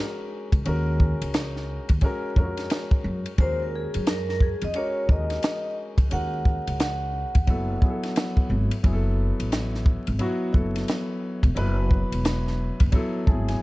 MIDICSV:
0, 0, Header, 1, 5, 480
1, 0, Start_track
1, 0, Tempo, 681818
1, 463, Time_signature, 4, 2, 24, 8
1, 9590, End_track
2, 0, Start_track
2, 0, Title_t, "Vibraphone"
2, 0, Program_c, 0, 11
2, 2398, Note_on_c, 0, 72, 102
2, 2532, Note_off_c, 0, 72, 0
2, 2551, Note_on_c, 0, 70, 66
2, 2625, Note_off_c, 0, 70, 0
2, 2644, Note_on_c, 0, 68, 81
2, 2880, Note_off_c, 0, 68, 0
2, 2884, Note_on_c, 0, 70, 87
2, 3021, Note_off_c, 0, 70, 0
2, 3029, Note_on_c, 0, 70, 88
2, 3104, Note_off_c, 0, 70, 0
2, 3115, Note_on_c, 0, 68, 82
2, 3266, Note_off_c, 0, 68, 0
2, 3269, Note_on_c, 0, 75, 100
2, 3351, Note_on_c, 0, 73, 111
2, 3352, Note_off_c, 0, 75, 0
2, 3570, Note_off_c, 0, 73, 0
2, 3597, Note_on_c, 0, 75, 84
2, 4041, Note_off_c, 0, 75, 0
2, 4313, Note_on_c, 0, 78, 119
2, 4759, Note_off_c, 0, 78, 0
2, 4791, Note_on_c, 0, 78, 101
2, 5959, Note_off_c, 0, 78, 0
2, 9590, End_track
3, 0, Start_track
3, 0, Title_t, "Grand piano"
3, 0, Program_c, 1, 0
3, 0, Note_on_c, 1, 56, 79
3, 0, Note_on_c, 1, 61, 68
3, 0, Note_on_c, 1, 66, 73
3, 0, Note_on_c, 1, 70, 90
3, 388, Note_off_c, 1, 56, 0
3, 391, Note_off_c, 1, 61, 0
3, 394, Note_off_c, 1, 66, 0
3, 398, Note_off_c, 1, 70, 0
3, 452, Note_on_c, 1, 56, 90
3, 461, Note_on_c, 1, 61, 86
3, 467, Note_on_c, 1, 66, 80
3, 472, Note_on_c, 1, 70, 100
3, 1321, Note_off_c, 1, 56, 0
3, 1325, Note_off_c, 1, 61, 0
3, 1328, Note_off_c, 1, 66, 0
3, 1331, Note_off_c, 1, 70, 0
3, 1414, Note_on_c, 1, 56, 95
3, 1421, Note_on_c, 1, 61, 93
3, 1428, Note_on_c, 1, 66, 82
3, 1437, Note_on_c, 1, 70, 102
3, 1635, Note_off_c, 1, 56, 0
3, 1638, Note_off_c, 1, 61, 0
3, 1642, Note_off_c, 1, 66, 0
3, 1646, Note_off_c, 1, 70, 0
3, 1658, Note_on_c, 1, 56, 78
3, 1663, Note_on_c, 1, 61, 76
3, 1673, Note_on_c, 1, 65, 55
3, 1677, Note_on_c, 1, 70, 91
3, 1716, Note_on_c, 1, 66, 69
3, 1726, Note_off_c, 1, 65, 0
3, 2310, Note_off_c, 1, 56, 0
3, 2313, Note_off_c, 1, 61, 0
3, 2320, Note_off_c, 1, 70, 0
3, 2340, Note_off_c, 1, 66, 0
3, 2376, Note_on_c, 1, 56, 78
3, 2382, Note_on_c, 1, 61, 61
3, 2388, Note_on_c, 1, 66, 67
3, 2395, Note_on_c, 1, 70, 81
3, 3242, Note_off_c, 1, 56, 0
3, 3246, Note_off_c, 1, 61, 0
3, 3248, Note_off_c, 1, 66, 0
3, 3252, Note_off_c, 1, 70, 0
3, 3333, Note_on_c, 1, 56, 79
3, 3340, Note_on_c, 1, 61, 77
3, 3346, Note_on_c, 1, 66, 75
3, 3353, Note_on_c, 1, 70, 83
3, 3554, Note_off_c, 1, 56, 0
3, 3558, Note_off_c, 1, 61, 0
3, 3561, Note_off_c, 1, 66, 0
3, 3565, Note_off_c, 1, 70, 0
3, 3577, Note_on_c, 1, 56, 74
3, 3583, Note_on_c, 1, 61, 60
3, 3588, Note_on_c, 1, 66, 68
3, 3597, Note_on_c, 1, 70, 76
3, 4230, Note_off_c, 1, 56, 0
3, 4233, Note_off_c, 1, 61, 0
3, 4236, Note_off_c, 1, 66, 0
3, 4240, Note_off_c, 1, 70, 0
3, 4289, Note_on_c, 1, 56, 76
3, 4297, Note_on_c, 1, 61, 68
3, 4303, Note_on_c, 1, 66, 65
3, 4311, Note_on_c, 1, 70, 80
3, 5159, Note_off_c, 1, 56, 0
3, 5163, Note_off_c, 1, 61, 0
3, 5166, Note_off_c, 1, 66, 0
3, 5170, Note_off_c, 1, 70, 0
3, 5257, Note_on_c, 1, 54, 76
3, 5260, Note_on_c, 1, 59, 76
3, 5268, Note_on_c, 1, 64, 75
3, 5276, Note_on_c, 1, 69, 89
3, 5476, Note_off_c, 1, 54, 0
3, 5478, Note_off_c, 1, 59, 0
3, 5482, Note_off_c, 1, 64, 0
3, 5486, Note_off_c, 1, 69, 0
3, 5494, Note_on_c, 1, 54, 84
3, 5500, Note_on_c, 1, 59, 77
3, 5508, Note_on_c, 1, 64, 74
3, 5515, Note_on_c, 1, 68, 70
3, 5559, Note_on_c, 1, 69, 88
3, 5567, Note_off_c, 1, 68, 0
3, 6148, Note_off_c, 1, 54, 0
3, 6152, Note_off_c, 1, 59, 0
3, 6155, Note_off_c, 1, 64, 0
3, 6181, Note_off_c, 1, 69, 0
3, 6217, Note_on_c, 1, 54, 86
3, 6223, Note_on_c, 1, 59, 83
3, 6229, Note_on_c, 1, 64, 87
3, 6235, Note_on_c, 1, 68, 84
3, 6283, Note_on_c, 1, 69, 102
3, 6287, Note_off_c, 1, 68, 0
3, 7083, Note_off_c, 1, 54, 0
3, 7086, Note_off_c, 1, 59, 0
3, 7089, Note_off_c, 1, 64, 0
3, 7116, Note_off_c, 1, 69, 0
3, 7172, Note_on_c, 1, 54, 97
3, 7179, Note_on_c, 1, 59, 94
3, 7184, Note_on_c, 1, 64, 88
3, 7190, Note_on_c, 1, 66, 106
3, 7394, Note_off_c, 1, 54, 0
3, 7397, Note_off_c, 1, 59, 0
3, 7400, Note_off_c, 1, 64, 0
3, 7403, Note_off_c, 1, 66, 0
3, 7408, Note_on_c, 1, 54, 78
3, 7415, Note_on_c, 1, 59, 71
3, 7422, Note_on_c, 1, 64, 80
3, 7427, Note_on_c, 1, 69, 96
3, 8066, Note_off_c, 1, 54, 0
3, 8069, Note_off_c, 1, 59, 0
3, 8073, Note_off_c, 1, 64, 0
3, 8075, Note_off_c, 1, 69, 0
3, 8129, Note_on_c, 1, 54, 95
3, 8137, Note_on_c, 1, 59, 82
3, 8144, Note_on_c, 1, 64, 84
3, 8148, Note_on_c, 1, 71, 103
3, 8999, Note_off_c, 1, 54, 0
3, 9003, Note_off_c, 1, 59, 0
3, 9007, Note_off_c, 1, 64, 0
3, 9009, Note_off_c, 1, 71, 0
3, 9094, Note_on_c, 1, 54, 101
3, 9102, Note_on_c, 1, 59, 93
3, 9108, Note_on_c, 1, 64, 85
3, 9112, Note_on_c, 1, 69, 105
3, 9315, Note_off_c, 1, 54, 0
3, 9319, Note_off_c, 1, 59, 0
3, 9322, Note_off_c, 1, 64, 0
3, 9324, Note_off_c, 1, 69, 0
3, 9331, Note_on_c, 1, 54, 77
3, 9340, Note_on_c, 1, 59, 72
3, 9342, Note_on_c, 1, 81, 69
3, 9347, Note_on_c, 1, 64, 79
3, 9353, Note_on_c, 1, 68, 91
3, 9484, Note_off_c, 1, 81, 0
3, 9499, Note_on_c, 1, 80, 72
3, 9579, Note_off_c, 1, 80, 0
3, 9590, Note_off_c, 1, 54, 0
3, 9590, Note_off_c, 1, 59, 0
3, 9590, Note_off_c, 1, 64, 0
3, 9590, Note_off_c, 1, 68, 0
3, 9590, End_track
4, 0, Start_track
4, 0, Title_t, "Upright bass"
4, 0, Program_c, 2, 32
4, 367, Note_on_c, 2, 37, 82
4, 442, Note_off_c, 2, 37, 0
4, 463, Note_on_c, 2, 39, 109
4, 786, Note_off_c, 2, 39, 0
4, 854, Note_on_c, 2, 37, 79
4, 1249, Note_off_c, 2, 37, 0
4, 1335, Note_on_c, 2, 39, 90
4, 1407, Note_off_c, 2, 39, 0
4, 1665, Note_on_c, 2, 41, 91
4, 1861, Note_off_c, 2, 41, 0
4, 2142, Note_on_c, 2, 42, 93
4, 2267, Note_off_c, 2, 42, 0
4, 2383, Note_on_c, 2, 39, 93
4, 2705, Note_off_c, 2, 39, 0
4, 2780, Note_on_c, 2, 42, 85
4, 3172, Note_off_c, 2, 42, 0
4, 3253, Note_on_c, 2, 41, 92
4, 3326, Note_off_c, 2, 41, 0
4, 3583, Note_on_c, 2, 39, 92
4, 3780, Note_off_c, 2, 39, 0
4, 4207, Note_on_c, 2, 37, 80
4, 4282, Note_off_c, 2, 37, 0
4, 4306, Note_on_c, 2, 39, 94
4, 4627, Note_off_c, 2, 39, 0
4, 4700, Note_on_c, 2, 37, 81
4, 5092, Note_off_c, 2, 37, 0
4, 5175, Note_on_c, 2, 39, 93
4, 5247, Note_off_c, 2, 39, 0
4, 5264, Note_on_c, 2, 30, 95
4, 5461, Note_off_c, 2, 30, 0
4, 5981, Note_on_c, 2, 32, 92
4, 6107, Note_off_c, 2, 32, 0
4, 6223, Note_on_c, 2, 30, 100
4, 6545, Note_off_c, 2, 30, 0
4, 6615, Note_on_c, 2, 33, 82
4, 7010, Note_off_c, 2, 33, 0
4, 7096, Note_on_c, 2, 32, 91
4, 7167, Note_off_c, 2, 32, 0
4, 7422, Note_on_c, 2, 30, 84
4, 7619, Note_off_c, 2, 30, 0
4, 8046, Note_on_c, 2, 28, 96
4, 8122, Note_off_c, 2, 28, 0
4, 8137, Note_on_c, 2, 30, 97
4, 8462, Note_off_c, 2, 30, 0
4, 8532, Note_on_c, 2, 28, 74
4, 8928, Note_off_c, 2, 28, 0
4, 9015, Note_on_c, 2, 30, 98
4, 9087, Note_off_c, 2, 30, 0
4, 9344, Note_on_c, 2, 32, 83
4, 9541, Note_off_c, 2, 32, 0
4, 9590, End_track
5, 0, Start_track
5, 0, Title_t, "Drums"
5, 369, Note_on_c, 9, 36, 92
5, 371, Note_on_c, 9, 51, 59
5, 439, Note_off_c, 9, 36, 0
5, 442, Note_off_c, 9, 51, 0
5, 461, Note_on_c, 9, 51, 69
5, 532, Note_off_c, 9, 51, 0
5, 703, Note_on_c, 9, 36, 86
5, 774, Note_off_c, 9, 36, 0
5, 856, Note_on_c, 9, 51, 75
5, 927, Note_off_c, 9, 51, 0
5, 943, Note_on_c, 9, 44, 52
5, 943, Note_on_c, 9, 51, 77
5, 947, Note_on_c, 9, 38, 104
5, 1013, Note_off_c, 9, 44, 0
5, 1013, Note_off_c, 9, 51, 0
5, 1018, Note_off_c, 9, 38, 0
5, 1101, Note_on_c, 9, 38, 34
5, 1172, Note_off_c, 9, 38, 0
5, 1329, Note_on_c, 9, 51, 61
5, 1335, Note_on_c, 9, 36, 82
5, 1399, Note_off_c, 9, 51, 0
5, 1405, Note_off_c, 9, 36, 0
5, 1415, Note_on_c, 9, 51, 55
5, 1421, Note_on_c, 9, 36, 85
5, 1486, Note_off_c, 9, 51, 0
5, 1491, Note_off_c, 9, 36, 0
5, 1663, Note_on_c, 9, 36, 87
5, 1734, Note_off_c, 9, 36, 0
5, 1812, Note_on_c, 9, 51, 53
5, 1821, Note_on_c, 9, 38, 40
5, 1882, Note_off_c, 9, 51, 0
5, 1891, Note_off_c, 9, 38, 0
5, 1901, Note_on_c, 9, 44, 55
5, 1901, Note_on_c, 9, 51, 78
5, 1912, Note_on_c, 9, 38, 121
5, 1971, Note_off_c, 9, 44, 0
5, 1971, Note_off_c, 9, 51, 0
5, 1982, Note_off_c, 9, 38, 0
5, 2051, Note_on_c, 9, 36, 92
5, 2121, Note_off_c, 9, 36, 0
5, 2293, Note_on_c, 9, 51, 58
5, 2363, Note_off_c, 9, 51, 0
5, 2380, Note_on_c, 9, 51, 69
5, 2382, Note_on_c, 9, 36, 107
5, 2451, Note_off_c, 9, 51, 0
5, 2452, Note_off_c, 9, 36, 0
5, 2774, Note_on_c, 9, 51, 70
5, 2844, Note_off_c, 9, 51, 0
5, 2863, Note_on_c, 9, 44, 54
5, 2863, Note_on_c, 9, 51, 71
5, 2868, Note_on_c, 9, 38, 102
5, 2933, Note_off_c, 9, 44, 0
5, 2933, Note_off_c, 9, 51, 0
5, 2938, Note_off_c, 9, 38, 0
5, 3021, Note_on_c, 9, 38, 35
5, 3091, Note_off_c, 9, 38, 0
5, 3101, Note_on_c, 9, 36, 89
5, 3172, Note_off_c, 9, 36, 0
5, 3249, Note_on_c, 9, 51, 60
5, 3320, Note_off_c, 9, 51, 0
5, 3335, Note_on_c, 9, 51, 54
5, 3405, Note_off_c, 9, 51, 0
5, 3582, Note_on_c, 9, 36, 93
5, 3653, Note_off_c, 9, 36, 0
5, 3730, Note_on_c, 9, 51, 57
5, 3739, Note_on_c, 9, 38, 35
5, 3801, Note_off_c, 9, 51, 0
5, 3810, Note_off_c, 9, 38, 0
5, 3820, Note_on_c, 9, 44, 54
5, 3820, Note_on_c, 9, 51, 80
5, 3831, Note_on_c, 9, 38, 119
5, 3890, Note_off_c, 9, 44, 0
5, 3890, Note_off_c, 9, 51, 0
5, 3901, Note_off_c, 9, 38, 0
5, 4208, Note_on_c, 9, 36, 97
5, 4210, Note_on_c, 9, 51, 59
5, 4278, Note_off_c, 9, 36, 0
5, 4281, Note_off_c, 9, 51, 0
5, 4301, Note_on_c, 9, 51, 72
5, 4372, Note_off_c, 9, 51, 0
5, 4543, Note_on_c, 9, 36, 86
5, 4614, Note_off_c, 9, 36, 0
5, 4698, Note_on_c, 9, 51, 68
5, 4769, Note_off_c, 9, 51, 0
5, 4785, Note_on_c, 9, 44, 54
5, 4785, Note_on_c, 9, 51, 73
5, 4790, Note_on_c, 9, 38, 102
5, 4856, Note_off_c, 9, 44, 0
5, 4856, Note_off_c, 9, 51, 0
5, 4860, Note_off_c, 9, 38, 0
5, 5173, Note_on_c, 9, 51, 61
5, 5176, Note_on_c, 9, 36, 83
5, 5243, Note_off_c, 9, 51, 0
5, 5246, Note_off_c, 9, 36, 0
5, 5261, Note_on_c, 9, 51, 59
5, 5263, Note_on_c, 9, 36, 84
5, 5331, Note_off_c, 9, 51, 0
5, 5333, Note_off_c, 9, 36, 0
5, 5505, Note_on_c, 9, 36, 96
5, 5575, Note_off_c, 9, 36, 0
5, 5656, Note_on_c, 9, 51, 55
5, 5665, Note_on_c, 9, 38, 38
5, 5726, Note_off_c, 9, 51, 0
5, 5735, Note_off_c, 9, 38, 0
5, 5744, Note_on_c, 9, 44, 54
5, 5744, Note_on_c, 9, 51, 77
5, 5755, Note_on_c, 9, 38, 113
5, 5815, Note_off_c, 9, 44, 0
5, 5815, Note_off_c, 9, 51, 0
5, 5825, Note_off_c, 9, 38, 0
5, 5891, Note_on_c, 9, 36, 86
5, 5962, Note_off_c, 9, 36, 0
5, 6133, Note_on_c, 9, 51, 67
5, 6204, Note_off_c, 9, 51, 0
5, 6223, Note_on_c, 9, 36, 108
5, 6223, Note_on_c, 9, 51, 67
5, 6293, Note_off_c, 9, 36, 0
5, 6294, Note_off_c, 9, 51, 0
5, 6616, Note_on_c, 9, 51, 71
5, 6686, Note_off_c, 9, 51, 0
5, 6703, Note_on_c, 9, 44, 53
5, 6703, Note_on_c, 9, 51, 71
5, 6708, Note_on_c, 9, 38, 100
5, 6773, Note_off_c, 9, 44, 0
5, 6773, Note_off_c, 9, 51, 0
5, 6778, Note_off_c, 9, 38, 0
5, 6862, Note_on_c, 9, 38, 32
5, 6932, Note_off_c, 9, 38, 0
5, 6940, Note_on_c, 9, 36, 95
5, 7010, Note_off_c, 9, 36, 0
5, 7089, Note_on_c, 9, 51, 64
5, 7159, Note_off_c, 9, 51, 0
5, 7174, Note_on_c, 9, 51, 52
5, 7245, Note_off_c, 9, 51, 0
5, 7421, Note_on_c, 9, 36, 90
5, 7491, Note_off_c, 9, 36, 0
5, 7572, Note_on_c, 9, 51, 57
5, 7581, Note_on_c, 9, 38, 38
5, 7643, Note_off_c, 9, 51, 0
5, 7652, Note_off_c, 9, 38, 0
5, 7660, Note_on_c, 9, 44, 52
5, 7660, Note_on_c, 9, 51, 76
5, 7671, Note_on_c, 9, 38, 107
5, 7731, Note_off_c, 9, 44, 0
5, 7731, Note_off_c, 9, 51, 0
5, 7741, Note_off_c, 9, 38, 0
5, 8048, Note_on_c, 9, 36, 98
5, 8051, Note_on_c, 9, 51, 59
5, 8118, Note_off_c, 9, 36, 0
5, 8121, Note_off_c, 9, 51, 0
5, 8142, Note_on_c, 9, 51, 68
5, 8213, Note_off_c, 9, 51, 0
5, 8382, Note_on_c, 9, 36, 91
5, 8453, Note_off_c, 9, 36, 0
5, 8535, Note_on_c, 9, 51, 72
5, 8605, Note_off_c, 9, 51, 0
5, 8623, Note_on_c, 9, 44, 55
5, 8623, Note_on_c, 9, 51, 75
5, 8628, Note_on_c, 9, 38, 110
5, 8693, Note_off_c, 9, 44, 0
5, 8693, Note_off_c, 9, 51, 0
5, 8698, Note_off_c, 9, 38, 0
5, 8781, Note_on_c, 9, 38, 37
5, 8851, Note_off_c, 9, 38, 0
5, 9010, Note_on_c, 9, 51, 60
5, 9014, Note_on_c, 9, 36, 80
5, 9081, Note_off_c, 9, 51, 0
5, 9084, Note_off_c, 9, 36, 0
5, 9097, Note_on_c, 9, 51, 62
5, 9100, Note_on_c, 9, 36, 85
5, 9167, Note_off_c, 9, 51, 0
5, 9171, Note_off_c, 9, 36, 0
5, 9343, Note_on_c, 9, 36, 94
5, 9414, Note_off_c, 9, 36, 0
5, 9493, Note_on_c, 9, 51, 54
5, 9502, Note_on_c, 9, 38, 35
5, 9564, Note_off_c, 9, 51, 0
5, 9572, Note_off_c, 9, 38, 0
5, 9590, End_track
0, 0, End_of_file